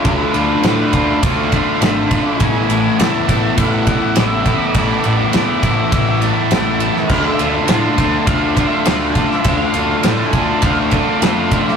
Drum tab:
CC |----------------|----------------|----------------|x---------------|
RD |x-x-x-x-x-x-x-x-|x-x-x-x-x-x-x-x-|x-x-x-x-x-x-x-x-|--x-x-x-x-x-x-x-|
SD |----o-------o---|----o-------o---|----o-------o--o|----o-------o--o|
BD |o-----o-o-o---o-|o-----o-o-o---o-|o-----o-o-------|o-----o-o-o---o-|

CC |----------------|
RD |x-x-x-x-x-x-x-x-|
SD |----o-------o--o|
BD |o-----o-o-o---o-|